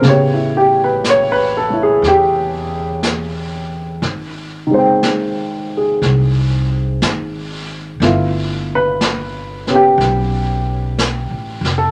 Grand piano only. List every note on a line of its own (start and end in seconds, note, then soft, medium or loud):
0.01 4.02 C#3 medium
0.01 1.69 A3 soft
0.01 4.04 B3 soft
0.07 0.55 G4 soft
0.07 0.40 C#5 medium
0.34 0.69 E4 soft
0.57 0.80 G4 medium
0.84 1.02 B4 medium
1.10 1.40 C#5 loud
1.32 1.68 B4 medium
1.57 1.80 A4 medium
1.70 4.03 A3 soft
1.70 4.04 E4 soft
1.83 2.01 G#4 medium
2.08 2.48 G4 medium
4.67 7.99 D#3 soft
4.71 8.01 G#3 soft
4.71 8.03 C4 soft
4.71 5.68 C5 medium
4.79 8.05 G5 soft
5.77 6.28 G#4 soft
8.02 11.91 A3 soft
8.02 9.66 B3 soft
8.02 11.91 E4 medium
8.02 11.91 F4 medium
8.75 9.67 B4 medium
9.68 11.91 B3 soft
9.68 11.91 C#4 soft
9.68 9.74 G4 soft
9.75 10.06 G4 medium
11.78 11.91 A4 medium